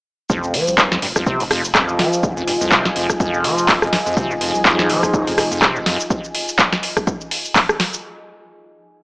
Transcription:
0.30 sub bass F1, acid bass F2, ambient pad F4, kick, shaker
0.36 ambient pad D#5
0.44 shaker
0.54 acid bass F3, open hi-hat
0.68 sub bass C2, shaker
0.78 acid bass F2, kick, clap, shaker
0.84 ambient pad G#5
0.92 acid bass F2, snare, shaker
1.02 sub bass F1, acid bass G2, open hi-hat
1.16 acid bass F2, kick, cross-stick, shaker
1.26 acid bass C3, kick, shaker
1.40 sub bass F1, acid bass F2, open hi-hat, shaker
1.51 acid bass F2, cross-stick, open hi-hat
1.65 shaker
1.75 acid bass F2, kick, cross-stick, clap, shaker
1.89 sub bass F1, shaker
1.99 acid bass F3, snare, open hi-hat
2.13 shaker
2.23 sub bass F1, acid bass F2, kick, shaker
2.37 acid bass F2, shaker
2.48 acid bass G2, open hi-hat
2.61 sub bass C2, acid bass F2, shaker
2.72 acid bass C3, kick, clap, shaker
2.85 acid bass F2, snare, shaker
2.96 sub bass F1, acid bass F2, open hi-hat
3.10 kick, cross-stick, shaker
3.20 acid bass F2, kick, shaker
3.34 sub bass F1, shaker
3.44 acid bass F3, open hi-hat
3.58 shaker
3.68 acid bass F2, kick, clap, open hi-hat, shaker
3.82 sub bass F1, acid bass F2, cross-stick, shaker
3.93 acid bass G2, snare, open hi-hat
4.06 acid bass F2, shaker
4.17 sub bass F1, acid bass C3, analog synth pad F3 D#4 G#4, kick, shaker
4.30 acid bass F2, shaker
4.41 acid bass F2, open hi-hat
4.55 sub bass C2, shaker
4.65 acid bass F2, kick, clap, shaker
4.79 snare, shaker
4.89 sub bass F1, acid bass F3, open hi-hat
5.03 kick, cross-stick, shaker
5.14 acid bass F2, kick, shaker
5.27 sub bass F1, acid bass F2, open hi-hat, shaker
5.38 acid bass G2, cross-stick, open hi-hat
5.51 acid bass F2, shaker
5.62 acid bass C3, kick, cross-stick, clap, shaker
5.76 sub bass F1, acid bass F2, shaker
5.86 acid bass F2, snare, open hi-hat
6.00 shaker
6.10 kick, shaker
6.24 shaker
6.35 open hi-hat
6.49 shaker
6.59 kick, clap, shaker
6.73 snare, shaker
6.83 open hi-hat
6.97 kick, cross-stick, shaker
7.07 kick, shaker
7.21 shaker
7.31 open hi-hat
7.45 shaker
7.56 kick, clap, open hi-hat, shaker
7.69 cross-stick, shaker
7.80 snare, open hi-hat
7.94 shaker

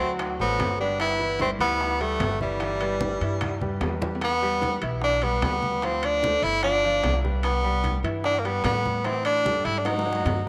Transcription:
Already playing: tenor saxophone A3 C4
0.00 upright bass D2, grand piano F#3 F#4 F#5
0.19 high bongo, high conga, high timbale
0.39 upright bass A1, tenor saxophone F#3 B3, grand piano A3 A4 C5, high bongo, high conga
0.59 upright bass G1, grand piano A3 A4 C5, high bongo, low bongo, high conga, high timbale, low timbale
0.79 grand piano G3 G4 B4, tenor saxophone B3 D4, high bongo
1.00 tenor saxophone B3 E4, high bongo, high conga, high timbale
1.20 grand piano E3 E4 E5, high conga
1.39 grand piano G3 G4 B4, tenor saxophone A3 C4, high bongo, high conga, high timbale, low timbale
1.59 upright bass D2, grand piano E3 E4 E5, tenor saxophone G3 B3, high conga, high timbale
1.81 high bongo, high conga
2.00 tenor saxophone E3 A3, grand piano G3 G4 B4, high conga, high timbale
2.20 upright bass G1, high bongo, low bongo, high conga, high timbale, low timbale
2.40 grand piano E3 E4 E5, tenor saxophone E3 G3, high conga
2.60 grand piano E3 E4 E5, high bongo, high conga, high timbale
2.80 grand piano G3 G4 B4, high bongo, high conga, high timbale
3.01 high bongo, high conga, low timbale
3.21 upright bass G2, grand piano E3 E4 E5, high conga, high timbale
3.41 high bongo, high conga, high timbale
3.61 grand piano G3 G4 B4, high bongo, high conga
3.81 upright bass E2, grand piano G3 G4 B4, high bongo, low bongo, high timbale, low timbale
4.01 grand piano G3 G4 B4, high bongo, low conga, high timbale
4.15 low timbale
4.21 tenor saxophone B3, high bongo, high conga, high timbale
4.42 grand piano G3 G4 B4, high conga
4.62 high bongo, high conga, high timbale, low timbale
4.82 upright bass B1, grand piano E3 E4 E5, high conga, high timbale
5.02 tenor saxophone D4, high bongo, high conga
5.22 grand piano G3 G4 B4, tenor saxophone B3, high conga, high timbale
5.42 upright bass D2, grand piano G3 G4 B4, tenor saxophone B3, high bongo, low bongo, high conga, high timbale, low timbale
5.63 high conga
5.82 grand piano F3 F4 F5, tenor saxophone C4, high bongo, high conga, high timbale
6.03 tenor saxophone D4, high bongo, high conga, high timbale
6.23 grand piano A3 A4 C5, high bongo, high conga, low timbale
6.42 upright bass G1, tenor saxophone E4, high conga, high timbale
6.63 grand piano F3 F4 F5, tenor saxophone D4, high bongo, high conga, high timbale
6.83 grand piano F3 F4 F5, high bongo, high conga
7.03 upright bass C2, high bongo, low bongo, high conga, high timbale, low timbale
7.23 grand piano G3 G4 B4, high bongo, high conga
7.43 tenor saxophone B3, high bongo, high conga, high timbale
7.64 grand piano G3 G4 B4, high conga
7.84 high bongo, high conga, high timbale, low timbale
8.03 upright bass G2, grand piano E3 E4 E5, high conga, high timbale
8.24 tenor saxophone D4, high bongo, high conga
8.39 tenor saxophone A#3
8.45 grand piano G3 G4 B4, tenor saxophone B3, high conga, high timbale
8.64 upright bass A2, grand piano G3 G4 B4, tenor saxophone B3, high bongo, low bongo, high conga, high timbale, low timbale
8.86 high conga
9.04 grand piano E3 E4 E5, tenor saxophone C4, high bongo, high conga, high timbale
9.25 tenor saxophone D4, high bongo, high conga, high timbale
9.45 grand piano G3 G4 A4, high bongo, high conga, low timbale
9.65 upright bass G#2, tenor saxophone E4, high conga, high timbale
9.79 tenor saxophone D4
9.85 grand piano F#3 F#4 F#5, tenor saxophone D#4, high bongo, high conga, high timbale
9.99 high bongo
10.06 grand piano F#3 F#4 F#5, high conga
10.13 high bongo
10.25 upright bass G2, low bongo, high conga, high timbale, low timbale

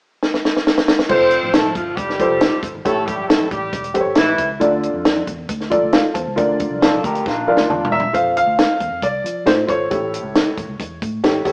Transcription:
0.23 snare
0.34 snare
0.45 snare
0.57 snare
0.67 snare
0.78 snare
0.88 snare
0.99 snare
1.09 fingered electric bass F1, horn section C4 C5, upright piano F4 A4 C5, kick, crash, low conga
1.31 closed hi-hat
1.43 fingered electric bass A1, high conga
1.53 horn section A3 A4, snare, closed hi-hat
1.65 high conga
1.75 fingered electric bass G1, horn section F3 F4, kick, closed hi-hat, low conga
1.96 fingered electric bass F1, horn section G3 G4, kick, closed hi-hat, muted conga, low conga
2.10 snare
2.19 upright piano F4 A4 C5, kick, closed hi-hat, high conga
2.30 fingered electric bass F1
2.41 snare, closed hi-hat
2.63 fingered electric bass G1, kick, closed hi-hat
2.74 fingered electric bass G#1
2.85 fingered electric bass A1, upright piano A2 G4 A4 C#5, horn section A3 A4, kick, closed hi-hat, muted conga, low conga
3.06 horn section G3 G4, kick, closed hi-hat, muted conga
3.17 fingered electric bass G1, high conga
3.28 horn section A3 A4, snare, closed hi-hat
3.39 high conga
3.50 fingered electric bass A1, horn section G3 G4, kick, closed hi-hat, low conga
3.73 fingered electric bass E1, kick, closed hi-hat, muted conga, low conga
3.84 closed hi-hat
3.94 upright piano G4 A4 C5, kick, closed hi-hat, muted conga, high conga
4.01 upright piano C#5
4.06 fingered electric bass G1
4.15 fingered electric bass A1, horn section E3 E4, snare, closed hi-hat, muted conga
4.38 fingered electric bass C#2, kick, closed hi-hat, muted conga
4.60 fingered electric bass D2, upright piano D3 F4 A4 D5, kick, closed hi-hat, muted conga, low conga
4.83 closed hi-hat
4.94 fingered electric bass F2, high conga
5.05 snare, closed hi-hat
5.16 high conga
5.27 fingered electric bass E2, kick, closed hi-hat, muted conga, low conga
5.49 fingered electric bass D2, kick, closed hi-hat, low conga
5.61 snare
5.70 upright piano F4 A4 D5, kick, closed hi-hat, high conga
5.83 fingered electric bass D2
5.93 upright piano A4 F5, snare, closed hi-hat, muted conga
6.14 fingered electric bass E2, upright piano C5 A5, kick, closed hi-hat
6.27 fingered electric bass C#2
6.36 fingered electric bass D2, upright piano D3 F4 A#4 D5, kick, closed hi-hat, muted conga, low conga
6.59 kick, closed hi-hat, muted conga
6.71 fingered electric bass C2, high conga
6.82 clean electric guitar F4 A4, snare, closed hi-hat, muted conga
6.93 high conga
7.04 fingered electric bass D2, clean electric guitar G4 A#4, kick, closed hi-hat, muted conga, low conga
7.15 closed hi-hat
7.26 fingered electric bass A#1, clean electric guitar D4 F4, kick, snare, muted conga, low conga
7.47 upright piano F4 A#4 D5 F5, muted fingered electric bass stroke, high conga
7.57 fingered electric bass D2, snare
7.70 fingered electric bass E2, upright piano A5, mid tom
7.85 floor tom
7.92 fingered electric bass E2, grand piano E5, upright piano A#5
8.00 floor tom
8.13 fingered electric bass F2, upright piano F4 A4 C5, grand piano F5, kick, closed hi-hat
8.37 grand piano F5, closed hi-hat
8.46 fingered electric bass D2
8.59 snare, closed hi-hat
8.80 fingered electric bass E2, kick, closed hi-hat
8.91 fingered electric bass F2
9.02 fingered electric bass C2, grand piano D5, kick, closed hi-hat
9.24 fingered electric bass F3, closed hi-hat
9.46 fingered electric bass A2, upright piano F4 A4 C5, grand piano C5, snare, closed hi-hat
9.67 fingered electric bass G#1, upright piano F4 A4 C5, grand piano C#5, kick, closed hi-hat
9.91 fingered electric bass A1, upright piano A2 G4 A4 C#5, kick, closed hi-hat
10.14 closed hi-hat
10.23 fingered electric bass C#2
10.35 snare, closed hi-hat
10.58 fingered electric bass A1, kick, closed hi-hat
10.68 fingered electric bass C#2
10.79 fingered electric bass E2, kick, closed hi-hat
11.02 fingered electric bass A2, kick, closed hi-hat
11.23 fingered electric bass A1, upright piano G4 A4 C#5, snare, closed hi-hat
11.45 fingered electric bass C#2, upright piano G4 A4 C#5, kick, closed hi-hat

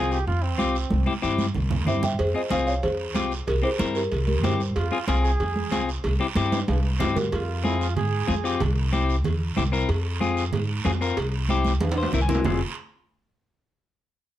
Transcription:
Already playing: upright bass C2, clean electric guitar C4 F4 G#4, trombone G#4
0.11 trombone G4, short guiro
0.27 upright bass F2, trombone F4, high conga, long guiro
0.43 trombone C4
0.58 upright bass C2, clean electric guitar C4 F4 G4, high conga, short guiro
0.75 short guiro
0.90 upright bass C2, high conga, long guiro
1.06 clean electric guitar C4 E4 G4, high conga
1.22 upright bass G2, clean electric guitar C4 E4 G4, short guiro
1.38 high conga, short guiro
1.55 upright bass C2, low conga, long guiro
1.71 low conga
1.86 upright bass G2, clean electric guitar C4 E4 G4, marimba C5 E5, low conga, short guiro
2.03 marimba E5 G5, low conga, short guiro
2.19 upright bass F2, marimba G#4 C5, cowbell, high conga, long guiro
2.34 clean electric guitar C4 F4 G#4, marimba C5 D#5
2.50 upright bass C2, clean electric guitar C4 F4 G#4, marimba C5 F5, cowbell, high conga, short guiro
2.67 marimba C#5 F5, short guiro
2.83 upright bass F2, marimba G#4 C5, cowbell, high conga, long guiro
3.14 upright bass C2, clean electric guitar C4 F4 G4, cowbell, high conga, short guiro
3.31 short guiro
3.47 upright bass C2, marimba G4 A#4, cowbell, high conga, long guiro
3.62 clean electric guitar C4 E4 G4, marimba G#4 C5
3.79 upright bass G2, clean electric guitar C4 E4 A#4, cowbell, high conga, short guiro
3.95 marimba G4 A#4, short guiro
4.12 upright bass C2, cowbell, high conga, long guiro
4.27 marimba G4 A#4, high conga
4.43 upright bass G2, clean electric guitar C4 E4 G4, marimba G4 C5, cowbell, high conga, low conga, low timbale, short guiro
4.60 short guiro
4.76 upright bass F2, trombone F4, cowbell, high conga, long guiro
4.92 clean electric guitar C4 F4 G#4
5.08 upright bass C2, clean electric guitar C4 F4 G#4, trombone F4, cowbell, high conga, short guiro
5.24 trombone G#4, short guiro
5.40 upright bass F2, cowbell, high conga, long guiro
5.56 high conga
5.72 upright bass C2, clean electric guitar C4 F4 G#4, cowbell, high conga, short guiro
5.89 short guiro
6.04 upright bass C2, cowbell, high conga, long guiro
6.20 clean electric guitar C4 E4 G4
6.35 upright bass G2, clean electric guitar C4 E4 G4, cowbell, high conga, short guiro
6.52 high conga, high timbale, short guiro
6.68 upright bass C2, cowbell, high conga, high timbale, long guiro
7.00 upright bass G2, clean electric guitar C4 E4 G4, cowbell, low conga, low timbale, short guiro
7.16 marimba G4 A#4, low conga, low timbale, short guiro
7.32 upright bass F2, trombone F4, cowbell, high conga, long guiro
7.64 clean electric guitar C4 F4 G#4, trombone E4, high conga, short guiro
7.80 trombone F4, short guiro
7.96 upright bass G#2, trombone G#4, cowbell, high conga, low conga, long guiro
8.27 upright bass F2, clean electric guitar C4 F4 G#4, high conga, short guiro
8.44 clean electric guitar C4 F4 G4, short guiro
8.60 upright bass C2, cowbell, high conga, low conga, long guiro
8.92 clean electric guitar C4 E4 G4, high conga, short guiro
9.09 short guiro
9.24 upright bass E2, cowbell, high conga, low conga, long guiro
9.57 upright bass C2, clean electric guitar C4 E4 G4, high conga, low conga, short guiro
9.72 clean electric guitar C4 E4 A#4, short guiro
9.89 upright bass F2, cowbell, high conga, long guiro
10.20 clean electric guitar C4 F4 G#4, high conga, short guiro
10.37 short guiro
10.53 upright bass G#2, cowbell, high conga, low conga, long guiro
10.85 upright bass F2, clean electric guitar C4 F4 G#4, high conga, low timbale, short guiro
11.01 clean electric guitar C4 F4 A#4, short guiro
11.17 upright bass C2, cowbell, high conga, long guiro
11.49 clean electric guitar C4 E4 G4, high conga, short guiro
11.65 high conga, short guiro
11.81 upright bass E2, cowbell, high conga, high timbale, long guiro
11.92 high timbale
11.98 clean electric guitar C5
12.03 low timbale
12.13 upright bass C2, clean electric guitar C4 E4 A#4 E5, low conga, short guiro
12.21 clean electric guitar G#5
12.28 clean electric guitar C4 E4 A#4, low conga, short guiro
12.35 low timbale
12.45 upright bass F1, clean electric guitar C4 F4 G#4, trombone G#4, low conga, low timbale, long guiro

